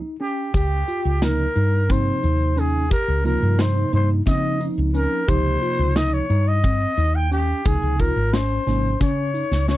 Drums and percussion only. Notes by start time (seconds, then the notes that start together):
0.54 kick, closed hi-hat
0.88 closed hi-hat
1.22 snare, closed hi-hat
1.56 closed hi-hat
1.90 kick, closed hi-hat
2.24 closed hi-hat
2.57 closed hi-hat
2.91 kick, closed hi-hat
3.25 closed hi-hat
3.59 snare, closed hi-hat
3.93 closed hi-hat
4.27 kick, snare, closed hi-hat
4.61 closed hi-hat
4.95 closed hi-hat
5.28 kick, closed hi-hat
5.62 closed hi-hat
5.96 snare, closed hi-hat
6.30 closed hi-hat
6.64 kick, closed hi-hat
6.98 closed hi-hat
7.32 closed hi-hat
7.65 kick, closed hi-hat
8.00 kick, closed hi-hat
8.34 snare, closed hi-hat
8.68 snare, closed hi-hat
9.01 kick, snare, closed hi-hat
9.35 closed hi-hat
9.52 snare
9.68 snare